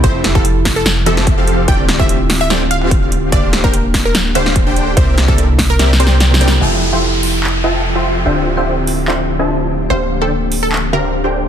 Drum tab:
HH |x-----x-----x-----o-----x-----x-----x-----x-----|x-----x-----x-----o-----x-----x-----x-----x-----|x-----x-----x-----o-----x-----x-----x-----x-----|x-----x-----x-----o-----x-----x-----x-----x-----|
CP |------------------------------------------------|------------------------------------------------|------------------------------------------------|------------------------------------------------|
SD |------o-----------o-----o--------o--------------|------o-----------o-----o-----------------------|------o-----------o-----o--------o--------------|------o-----------o-----o---o---o---o---o---o---|
BD |o--------o--------o-----------------o-----------|o--------o--------------------------o-----------|o--------o--------o-----------------o-----------|o--------o--------o-----------------------------|

HH |------------------o-----------------------------|------------------o-----------------------------|------------------o-----------------------------|
CP |------------------------x-----------------------|------------------------x-----------------------|------------------------x-----------------------|
SD |------------------------------------------------|------------------------------------------------|------------------------------------------------|
BD |------------------------------------------------|------------------------------------------------|------------------------------------------------|